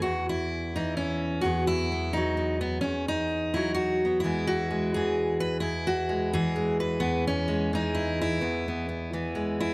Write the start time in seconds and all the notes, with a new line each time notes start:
Already playing: E3
0.02 E2 F#4
0.29 E4
0.76 E3 D#4
0.97 C#4
1.41 E2 F#3 B3 F#4
1.67 E4
1.92 B3
2.13 F#3 D#4
2.37 B3
2.61 B3
2.81 E2 C#4
3.08 D#4
3.54 F#3 E4
3.74 F#4
4.05 B3
4.20 E2 E3 E4
4.25 G#3 B3
4.47 F#4
4.71 G#3
4.94 E3 G#4
5.40 B4
5.60 E2 E4
5.87 F#4
6.09 G#3
6.33 E3 G#4
6.56 G#3
6.80 B4
7.00 E2 B3
7.27 C#4
7.48 G#3
7.73 E3 D#4
7.95 E4
8.21 E4
8.41 E2 B3
8.68 B3
8.89 B3
9.13 E3 B3
9.35 G#3
9.60 E4 G#4